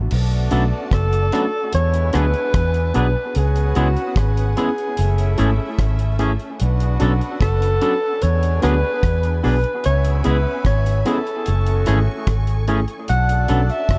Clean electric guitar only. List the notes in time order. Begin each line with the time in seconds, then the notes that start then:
0.51 F#3 B3 D4 A4
1.33 F#3 B3 D4 A4
2.14 F#3 B3 D4 G#4
2.95 F#3 B3 D4 G#4
3.76 G#3 B3 E4 G#4
4.57 G#3 B3 E4 G#4
5.38 E3 A3 C#4 G#4
6.20 E3 A3 C#4 G#4
7.01 F#3 B3 D4 A4
7.82 F#3 B3 D4 A4
8.63 F#3 B3 D4 G#4
9.44 F#3 B3 D4 G#4
10.25 G#3 B3 E4 G#4
11.06 G#3 B3 E4 G#4
11.87 E3 A3 C#4 G#4
12.68 E3 A3 C#4 G#4
13.49 F#3 B3 D4 A4